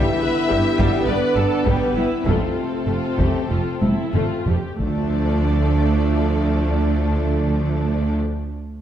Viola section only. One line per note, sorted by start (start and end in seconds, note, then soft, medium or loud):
0.00 0.22 G4 medium
0.23 0.51 B4 medium
0.51 1.08 G4 medium
1.07 1.36 B4 medium
1.36 1.66 A4 medium
1.67 1.97 G4 medium
1.96 2.26 E4 medium
2.27 2.82 F4 soft
2.87 3.16 F4 soft
3.19 3.50 G4 soft
3.49 3.81 F4 soft
3.81 4.13 E4 soft
4.14 4.47 F4 soft
4.47 4.80 G4 soft
4.80 8.16 F3 soft
4.80 8.17 A3 soft